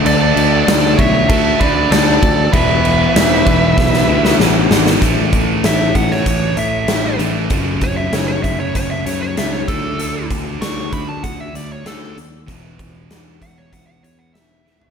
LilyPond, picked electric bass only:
\new Staff \with { instrumentName = "Picked electric bass" } { \clef bass \time 4/4 \key d \lydian \tempo 4 = 96 d,8 d,8 d,8 b,,8 d,8 d,8 d,8 d,8 | e,,4 e,,8 e,,8 b,,8 d,8 a,,8 gis,,8 | a,,4 a,,8 a,,8 a,,8 a,,8 a,,8 a,,8 | fis,,4 fis,,8 fis,,8 fis,,8 fis,8 cis,8 d,8 |
d,4 d,8 d,8 d,8 d,8 d,8 dis,8 | e,,4 e,,8 r8 e,,8 e,8 r4 | }